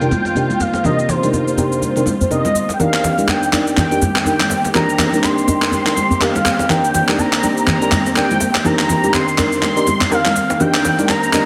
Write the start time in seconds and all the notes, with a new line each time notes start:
Already playing: D#3 A#3 C4 F4 G5
0.01 C3 D4 D#4 G4 A#4, muted conga, cabasa
0.11 djembe tone, high conga, djembe bass, cabasa
0.25 djembe slap, cabasa
0.35 C3 D4 D#4 G4 A#4, muted conga, djembe tone, cabasa
0.50 high conga, cabasa
0.60 F5, djembe slap, djembe tone, cabasa
0.73 muted conga, djembe slap, cabasa
0.84 C3 D4 D#4 G4 A#4 D#5, high conga, djembe tone, low conga, cabasa
0.99 cabasa
1.09 C5, djembe slap, djembe tone, low conga, cabasa
1.23 C3 D4 D#4 G4 A#4, muted conga, high conga, cabasa
1.33 djembe tone, cabasa
1.48 cabasa
1.57 C3 D4 D#4 G4 A#4, muted conga, high conga, djembe tone, djembe bass, cabasa
1.72 cabasa
1.81 djembe tone, high conga, cabasa
1.96 C3 D4 D#4 G4 A#4, muted conga, cabasa
2.06 high conga, djembe tone, cabasa
2.21 djembe bass, cabasa
2.31 C3 D4 D#4 G4 A#4 D#5, muted conga, djembe tone, cabasa
2.45 djembe slap, high conga, cabasa
2.55 djembe tone, cabasa
2.69 djembe slap, muted conga, cabasa
2.74 G5
2.79 D#3 A#3 C4 D4 D#4 G4 A#4 F5, djembe tone, low conga, cabasa
2.94 clap, cabasa
3.04 djembe slap, djembe tone, low conga, cabasa
3.18 D4 D#4 G4 A#4, muted conga, high conga, cabasa
3.28 G5, clap, djembe tone, cabasa
3.43 cabasa
3.52 D4 D#4 G4 A#4, clap, muted conga, high conga, djembe tone, cabasa
3.67 cabasa
3.77 G5, clap, djembe tone, low conga, djembe bass, cabasa
3.91 D4 D#4 G4 A#4, muted conga, cabasa
4.02 djembe tone, high conga, djembe bass, cabasa
4.16 clap, djembe slap, cabasa
4.25 D4 D#4 G4 A#4 G5, muted conga, djembe tone, cabasa
4.40 clap, high conga, cabasa
4.50 djembe slap, djembe tone, cabasa
4.64 muted conga, djembe slap, cabasa
4.75 D4 D#4 G4 A#4 A#5, clap, high conga, djembe tone, low conga, cabasa
4.89 cabasa
4.98 clap, djembe slap, djembe tone, low conga, cabasa
5.12 D4 D#4 G4 A#4, muted conga, high conga, cabasa
5.24 C6, clap, djembe tone, cabasa
5.38 cabasa
5.48 D4 D#4 G4 A#4, djembe tone, high conga, djembe bass, cabasa
5.62 clap, cabasa
5.72 C6, djembe tone, high conga, cabasa
5.86 D4 D#4 G4 A#4, clap, muted conga, cabasa
5.96 high conga, djembe tone, cabasa
6.10 djembe bass, cabasa
6.20 D4 D#4 G4 A#4 F5, clap, muted conga, djembe tone, cabasa
6.35 djembe slap, high conga, cabasa
6.45 clap, djembe tone, cabasa
6.59 muted conga, djembe slap, cabasa
6.69 D4 D#4 G4 A#4 G5, clap, djembe tone, low conga, cabasa
6.84 cabasa
6.94 djembe slap, djembe tone, low conga, cabasa
7.08 D4 D#4 G4 A#4, clap, muted conga, high conga, cabasa
7.18 A#5, djembe tone, cabasa
7.33 clap, cabasa
7.43 D4 D#4 G4 A#4, muted conga, high conga, djembe tone, cabasa
7.57 cabasa
7.67 A#5, clap, djembe tone, low conga, djembe bass, cabasa
7.82 D4 D#4 G4 A#4, muted conga, cabasa
7.91 clap, djembe tone, high conga, djembe bass, cabasa
8.06 djembe slap, cabasa
8.16 D4 D#4 G4 A#4 G5, clap, muted conga, djembe tone, cabasa
8.31 high conga, cabasa
8.40 djembe slap, djembe tone, cabasa
8.55 clap, muted conga, djembe slap, cabasa
8.64 D4 D#4 G4 A#4 A#5, high conga, djembe tone, low conga, cabasa
8.79 clap, cabasa
8.89 djembe slap, djembe tone, low conga, cabasa
9.04 D4 D#4 G4 A#4, muted conga, high conga, cabasa
9.13 C6, clap, djembe tone, cabasa
9.28 cabasa
9.38 D4 D#4 G4 A#4, clap, high conga, djembe tone, djembe bass, cabasa
9.52 cabasa
9.61 C6, clap, high conga, djembe tone, cabasa
9.76 D4 D#4 G4 A#4, muted conga, cabasa
9.87 high conga, djembe tone, cabasa
10.01 clap, djembe bass, cabasa
10.10 D4 D#4 G4 A#4 F5, muted conga, djembe tone, cabasa
10.25 clap, djembe slap, high conga, cabasa
10.36 djembe tone, cabasa
10.50 muted conga, djembe slap, cabasa
10.60 D4 D#4 G4 A#4 G5, djembe tone, low conga, cabasa
10.74 clap, cabasa
10.85 djembe slap, djembe tone, low conga, cabasa
10.98 D4 D#4 G4 A#4, muted conga, high conga, cabasa
11.09 A#5, clap, djembe tone, cabasa
11.23 cabasa
11.32 D4 D#4 G4 A#4, clap, muted conga, djembe tone, high conga, cabasa